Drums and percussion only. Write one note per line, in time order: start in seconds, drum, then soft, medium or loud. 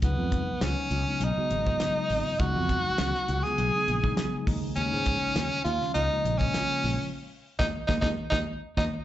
0.02 kick loud
0.02 closed hi-hat medium
0.32 kick medium
0.32 closed hi-hat medium
0.61 snare loud
0.61 closed hi-hat medium
0.91 closed hi-hat medium
1.21 closed hi-hat medium
1.51 closed hi-hat medium
1.67 kick medium
1.80 snare loud
1.80 closed hi-hat medium
2.10 open hi-hat medium
2.40 kick loud
2.40 closed hi-hat medium
2.69 kick medium
2.69 closed hi-hat medium
2.98 snare loud
2.98 closed hi-hat medium
3.15 snare soft
3.28 closed hi-hat medium
3.44 snare soft
3.58 closed hi-hat medium
3.88 closed hi-hat medium
4.04 kick medium
4.17 snare loud
4.17 closed hi-hat medium
4.47 kick loud
4.47 open hi-hat medium
4.76 closed hi-hat medium
4.92 snare soft
5.06 kick medium
5.06 closed hi-hat medium
5.36 snare loud
5.36 closed hi-hat medium
5.66 closed hi-hat medium
5.82 snare soft
5.95 closed hi-hat medium
6.25 closed hi-hat medium
6.41 kick medium
6.54 snare loud
6.54 closed hi-hat medium
6.84 open hi-hat medium
7.59 kick medium
7.59 snare medium
7.89 kick medium
7.89 snare medium
8.02 kick medium
8.02 snare medium
8.32 kick medium
8.32 snare medium
8.77 kick medium
8.77 snare medium